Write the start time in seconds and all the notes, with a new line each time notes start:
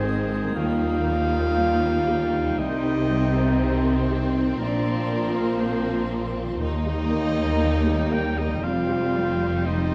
Already playing: G#1 G#2 D#3 G#3 C4 D#4 C5 G#5 D#6
0.04 G#4
0.30 D#4
0.39 D#3
0.44 G3
0.48 D#4
0.52 F4 A#4 F5 G5
0.56 D#2 G3 A#3
0.82 D#4
1.08 G3
1.32 A#4
1.58 G3
1.83 D#4
2.08 G4
2.33 D#4
2.42 C3
2.46 G3
2.51 D#4
2.55 C2 D#4 C5 D#5 C6
2.59 C2 C3 D#3 C4
2.85 D#4
3.10 G3
3.35 C5
3.61 G3
3.85 D#4
4.11 G4
4.36 D#4
4.42 A#2
4.46 A#3
4.51 F4
4.55 D4 C5
4.59 A#1 A#2 F3 A#3 D5 A#5
4.86 F4
5.11 A#3
5.34 A#3 A#4 C5
5.59 A#3 C4 C5
5.87 F4
6.11 A#4
6.37 F4
6.43 D#3
6.48 A#3
6.52 G4
6.57 D#2 G3 D#4 D#5 G5
6.61 D#2 A#3 D#5
6.86 G4
7.11 A#3
7.36 D#5
7.61 A#3 A#5
7.86 G4
8.11 G4 A#4 G5
8.35 D#4 G4 D#5
8.45 F2
8.50 G3
8.54 G4
8.59 F1 F2 F4 C5 C6
8.64 F2 G3 C4 F5
8.89 G4
9.15 G3
9.41 C5
9.65 G3 D#4 D#5